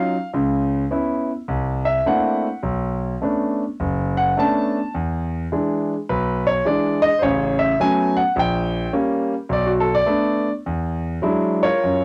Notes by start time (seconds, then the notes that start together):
Already playing: F#3 C#4 D#4 F4 F5
0.33 C#2 C#3
0.91 B3 C#4 E4
1.48 C2
1.85 E5
2.06 A3 A#3 C4 D4 E4 F#5
2.63 B1
3.22 A3 B3 C#4 D4
3.80 F#1
4.17 F#5
4.37 A3 B3 C#4 D4 A5
4.94 E2
5.52 E3 G#3 D4
6.09 B1 B4
6.47 C#5
6.65 E3 G#3 D4 D5
7.02 D#5
7.19 A1 C5 C#5
7.23 C#3
7.59 E5
7.80 F#3 A3 B3 C#4 G#5
8.17 F#5
8.36 A#1 G5
8.93 G3 A#3 C#4
9.49 B1 D5
9.66 F#4
9.80 A4
9.95 D5
10.06 A3 B3 D4
10.66 E2
11.22 F#3 G#3 D4 E4
11.63 F4 A#4 C#5
11.84 F#2